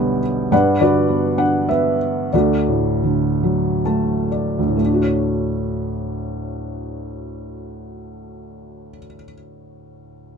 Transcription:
0.00 0.48 B1 soft
0.00 0.20 B2 soft
0.00 0.48 D3 soft
0.00 0.49 G3 soft
0.00 0.54 B3 soft
0.00 0.54 G4 soft
0.00 0.53 B4 soft
0.00 0.54 C#5 soft
0.00 0.53 D5 medium
0.00 0.54 E5 medium
0.52 2.29 G2 soft
0.52 0.81 B4 soft
0.52 0.79 D5 soft
0.52 0.81 F#5 medium
0.80 1.97 D3 soft
0.80 1.66 F#4 soft
0.80 1.66 B4 soft
0.80 1.40 D5 medium
1.09 1.67 B3 soft
1.38 2.30 D4 soft
1.38 1.69 F#5 medium
1.69 2.31 B3 soft
1.69 2.30 B4 soft
1.69 2.35 E5 soft
2.33 4.57 D2 soft
2.33 3.82 F#4 soft
2.33 3.82 A4 soft
2.33 3.81 D5 soft
2.68 4.27 A2 soft
3.04 4.76 D3 soft
3.43 4.76 F#3 soft
3.86 4.75 A3 soft
3.86 4.28 A5 soft
4.32 4.77 D5 soft
4.59 8.88 D2 soft
4.68 8.97 A2 soft
4.76 9.06 A3 soft
4.85 9.15 D4 soft
4.94 9.24 F#4 soft
5.03 9.32 C#5 soft

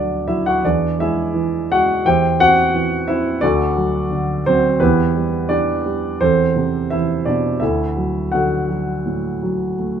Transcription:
0.00 0.59 D2 medium
0.00 0.61 D3 soft
0.00 0.26 F#3 soft
0.00 0.25 D4 medium
0.00 0.29 D5 medium
0.27 0.62 F#3 soft
0.27 0.44 E4 medium
0.27 0.46 E5 medium
0.46 0.63 F#4 medium
0.46 0.63 F#5 medium
0.64 2.01 E2 medium
0.64 0.98 D4 medium
0.64 0.98 G#4 medium
0.64 0.98 B4 medium
0.64 1.01 D5 medium
0.99 1.69 G#3 soft
0.99 1.67 E4 medium
0.99 1.67 G#4 medium
0.99 1.66 E5 medium
1.34 2.02 E3 soft
1.71 2.04 G#3 soft
1.71 2.04 F#4 medium
1.71 2.07 F#5 medium
2.05 3.39 E2 medium
2.05 2.39 G4 medium
2.05 2.38 C5 medium
2.05 2.38 E5 medium
2.05 2.41 G5 medium
2.39 3.06 C4 soft
2.39 3.05 F#4 medium
2.39 3.05 C5 medium
2.39 3.05 F#5 loud
2.74 3.40 E3 medium
3.08 3.41 C4 soft
3.08 3.41 E4 medium
3.08 3.43 E5 medium
3.41 4.76 D2 medium
3.41 4.41 D4 medium
3.41 4.42 F#4 medium
3.41 4.41 A4 medium
3.41 4.48 D5 medium
3.77 4.45 F#3 medium
4.11 4.78 D3 soft
4.46 4.79 F#3 medium
4.46 4.79 C4 medium
4.46 4.82 C5 medium
4.80 6.16 E2 medium
4.80 5.46 B3 medium
4.80 5.46 E4 medium
4.80 5.46 G4 medium
4.80 5.52 B4 medium
5.16 5.84 G3 medium
5.49 6.18 E3 soft
5.49 6.16 D4 medium
5.49 6.16 G4 medium
5.49 6.22 D5 medium
5.86 6.20 G3 soft
6.20 7.57 E2 medium
6.20 6.88 C4 medium
6.20 6.88 A4 medium
6.20 6.93 C5 medium
6.56 7.58 C3 medium
6.90 7.59 E3 soft
6.90 7.24 E4 medium
6.90 7.27 E5 medium
7.25 7.60 B2 soft
7.25 7.60 D4 medium
7.25 7.62 D5 medium
7.60 10.00 D2 medium
7.60 8.29 E4 medium
7.60 8.29 A4 medium
7.60 8.34 E5 medium
7.97 8.68 F#3 soft
8.32 9.74 D3 soft
8.32 10.00 F#4 soft
8.32 10.00 A4 soft
8.32 10.00 F#5 medium
8.70 9.41 F#3 soft
9.06 10.00 A2 soft
9.43 10.00 F#3 soft
9.79 10.00 A3 soft

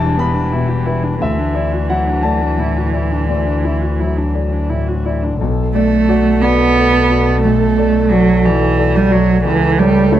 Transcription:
0.00 1.23 E1 medium
0.00 1.17 E2 medium
0.00 1.17 E3 medium
0.00 0.40 G3 medium
0.00 0.19 D4 medium
0.00 1.23 E4 medium
0.00 0.19 B4 medium
0.00 1.23 G5 loud
0.00 0.16 A5 loud
0.17 0.36 B3 medium
0.17 0.73 B4 medium
0.17 1.17 B5 medium
0.34 0.54 D4 medium
0.52 1.08 B2 medium
0.52 0.70 E4 medium
0.68 0.87 G4 medium
0.85 1.04 E4 medium
0.85 1.21 B4 medium
1.03 1.19 D4 medium
1.20 3.24 D2 medium
1.20 5.39 D2 medium
1.20 5.16 E3 medium
1.20 1.39 A3 medium
1.20 1.86 E5 medium
1.38 1.57 D4 medium
1.55 1.74 E4 medium
1.55 2.10 D5 medium
1.72 1.91 F#4 soft
1.89 2.44 F#3 soft
1.89 2.08 E4 soft
1.89 2.21 F#5 medium
2.07 2.25 D4 medium
2.23 2.42 A3 soft
2.23 2.79 D5 soft
2.23 3.24 A5 medium
2.41 2.60 D4 soft
2.58 3.14 A2 soft
2.58 2.78 E4 soft
2.77 2.96 F#4 soft
2.92 3.13 E4 soft
2.92 3.27 D5 soft
3.11 3.29 D4 soft
3.28 5.36 D2 soft
3.28 3.48 A3 medium
3.28 4.31 D5 medium
3.46 3.65 D4 soft
3.64 3.82 E4 soft
3.64 4.21 E4 soft
3.81 4.01 F#4 soft
3.99 4.56 F#3 soft
3.99 4.18 E4 soft
4.17 4.36 D4 soft
4.34 4.54 A3 soft
4.34 4.91 D5 soft
4.52 4.71 D4 soft
4.69 5.26 A2 soft
4.69 4.89 E4 soft
4.88 5.07 F#4 soft
5.05 5.25 E4 soft
5.05 5.40 D5 soft
5.23 5.40 D4 soft
5.40 9.47 B1 medium
5.40 7.40 B1 medium
5.40 9.42 A4 medium
5.74 6.43 A3 loud
5.74 6.05 A3 medium
5.74 6.05 D5 medium
6.09 6.39 F#4 medium
6.09 6.39 D5 medium
6.42 7.42 B3 loud
6.42 6.73 F#4 medium
6.42 6.73 D5 medium
6.77 7.07 A3 medium
6.77 7.07 D5 medium
7.10 7.40 F#4 medium
7.10 7.40 D5 medium
7.43 9.42 B1 medium
7.43 8.12 A3 loud
7.78 8.08 A3 medium
7.78 8.08 D5 medium
8.11 8.47 F#3 loud
8.11 8.42 F#4 medium
8.11 8.42 D5 medium
8.45 8.97 E3 loud
8.45 8.75 F#4 medium
8.45 8.75 D5 medium
8.78 9.08 A3 soft
8.78 9.09 D5 medium
8.96 9.13 G3 loud
9.11 9.44 F#3 loud
9.11 9.42 F#4 medium
9.11 9.42 D5 medium
9.45 10.20 C#2 medium
9.45 9.80 E3 loud
9.45 10.20 A4 medium
9.79 10.14 G3 loud
9.79 10.09 A3 medium
9.79 10.10 C#5 medium
10.12 10.20 A3 loud
10.12 10.20 E4 medium
10.12 10.20 C#5 medium

